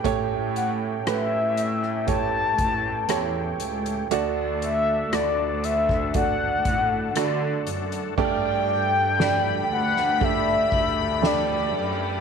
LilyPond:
<<
  \new Staff \with { instrumentName = "Violin section" } { \time 4/4 \key g \major \tempo 4 = 59 r1 | r1 | g''4 b''2. | }
  \new Staff \with { instrumentName = "Soft synth lead" } { \time 4/4 \key g \major r8 fis''8 e''4 a''4. r8 | r8 e''8 d''8 e''8 fis''4. r8 | r8 g''4 fis''8 e''4 d''8. r16 | }
  \new Staff \with { instrumentName = "Grand piano" } { \time 4/4 \key g \major <a g' cis''>4 <a g' b'>4 <a g' cis''>4 <a g' cis''>4 | <a fis' d''>4 <a fis' d''>4 <a fis' d''>4 <a fis' d''>4 | <a d' g' d''>4 <a d' g' d''>4 <a d' g' d''>4 <a d' g' d''>4 | }
  \new Staff \with { instrumentName = "Grand piano" } { \clef bass \time 4/4 \key g \major a,4. r2 r8 | d4. r2 r8 | g,4. r2 r8 | }
  \new Staff \with { instrumentName = "Tonewheel organ" } { \time 4/4 \key g \major <a cis' g'>1 | <d d' fis' a'>1 | <a d' g'>1 | }
  \new Staff \with { instrumentName = "Cello section" } { \clef bass \time 4/4 \key g \major a,4 a,4. a,8 e,8 cis,8 | d,4 d,4. a,8 d8 fis,8 | g,4. d,4 d,4 fis,8 | }
  \new DrumStaff \with { instrumentName = "Drums" } \drummode { \time 4/4 <hh bd>8 hh8 <hh ss>8 hh16 ss16 <hh bd>8 <hh bd>8 <hh ss>8 hh16 hh16 | hh8 hh8 <hh ss>8 hh16 <bd ss>16 <hh bd>8 <hh bd>8 <hh ss>8 hh16 hh16 | <cymc bd>16 cymr16 cymr8 <cymr sn>8 cymr16 sn16 <bd cymr>8 <bd cymr>8 <cymr sn>8 cymr8 | }
>>